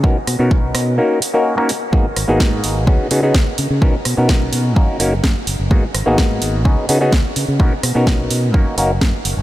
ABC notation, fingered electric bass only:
X:1
M:4/4
L:1/16
Q:1/4=127
K:B
V:1 name="Fingered electric bass" clef=bass
B,,, z B,, B,, B,,,2 B,,2 z8 | G,, z G,,, G,,, G,,2 G,,,2 C,, z C,2 C,, z C, C, | B,,, z B,, B,, B,,,2 B,,2 F,, z F,,,2 F,, z F,,, F,,, | G,, z G,,, G,,, G,,2 G,,,2 C,, z C,2 C,, z C, C, |
B,,, z B,, B,, B,,,2 B,,2 F,, z F,,,2 F,, z F,,, F,,, |]